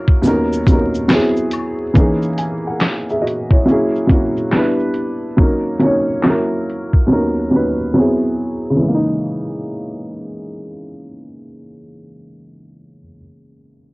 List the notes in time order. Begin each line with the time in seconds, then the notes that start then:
Already playing: F#3 A#3 C#4 E4 A#4
0.08 kick
0.22 D#2 F#3 B3 C#4, maracas, shaker
0.27 D#4 A#4
0.53 shaker
0.67 D#2 F#3 B3 C#4, kick, closed hi-hat, maracas, shaker
0.71 D#4 A#4
0.95 shaker
1.08 F#3 B3 C4, snare, clap, maracas, shaker
1.13 E4 G#4
1.36 shaker
1.51 closed hi-hat, high woodblock, shaker, maracas
1.94 E3 A#3 C#4, kick, shaker
1.98 D#4 G#4
2.22 shaker
2.38 G#5, closed hi-hat, shaker
2.67 A#4 F#5
2.80 snare, clap, shaker
3.09 G#4 E5, shaker
3.22 F#4 D#5
3.27 closed hi-hat, shaker
3.51 E4 C#5, kick
3.65 F#3 A#3 C#4, shaker
3.70 E4 G#4
3.96 shaker
4.07 F#3 A#3 C#4, kick, closed hi-hat, shaker
4.12 E4 F#4
4.37 shaker
4.52 G3 B3 D4, snare, clap, shaker
4.56 E4 B4
4.79 shaker
4.94 closed hi-hat, shaker
5.37 F#3 A#3 C#4, kick
5.41 D#4 A#4
5.79 F#3 A#3 C#4, closed hi-hat
5.84 D#4 C#5
6.23 F#3 A#3 C#4, snare, clap
6.28 E4 A#4
6.70 closed hi-hat
6.93 kick
7.06 D#2 F#3 B3 C#4
7.11 D#4 A#4
7.50 D#2 F#3 B3 C#4
7.55 D#4 B4
7.94 F#3 B3 C4
7.98 E4 G#4
8.70 C#3
8.76 E3
8.82 G#3
8.88 A#3
8.94 D#4